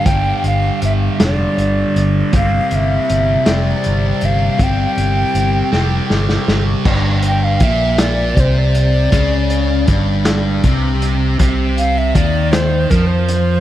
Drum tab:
CC |------------|------------|------------|x-----------|
HH |x-x-x-x-x-x-|x-x-x-x-x-x-|x-x-x-------|--x-x-x-x-x-|
SD |------o-----|------o-----|------o-ooo-|------o-----|
BD |o-----------|o-----------|o-----------|o---o---o---|

CC |------------|------------|
HH |x-x-x-x-x-x-|x-x-x-x-x-x-|
SD |------o-----|------o-----|
BD |o---o---o---|o---o---o---|